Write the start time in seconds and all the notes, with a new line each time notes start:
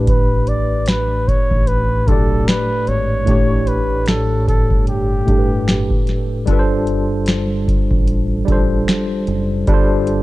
Already playing: A1 A2 A3 D4 G4 B4
0.07 B4, kick, closed hi-hat
0.47 D5, closed hi-hat
0.86 B4, finger snap, snare, closed hi-hat
1.28 C#5, kick, closed hi-hat
1.51 A1, kick
1.67 B4, closed hi-hat
2.05 B1 A2 A3 D4 A4, kick, closed hi-hat
2.10 G4 D5
2.48 B4, finger snap, snare, closed hi-hat
2.87 G#1 C#5, closed hi-hat
3.24 A1 A2 A3 D4, kick, closed hi-hat
3.29 G4 C#5
3.67 B4, closed hi-hat
4.06 A4, finger snap, snare, closed hi-hat
4.48 A4, kick, closed hi-hat
4.71 G1, kick
4.87 G4, closed hi-hat
5.25 G1 A2 A3 D4, kick, closed hi-hat
5.30 G4 A4
5.39 B4
5.68 finger snap, snare, closed hi-hat
5.90 kick
6.07 snare, closed hi-hat
6.46 G1 G3 D4 F4, kick, closed hi-hat
6.51 A4 B4
6.59 C5
6.87 closed hi-hat
7.26 finger snap, snare, closed hi-hat
7.68 kick, closed hi-hat
7.91 A1, kick
8.07 closed hi-hat
8.45 A1 G3 D4 F4, kick, closed hi-hat
8.50 A4 C5
8.88 finger snap, snare, closed hi-hat
9.27 F#1, closed hi-hat
9.67 G1 G3 D4 F4, kick, closed hi-hat
9.72 A4 C5
10.07 closed hi-hat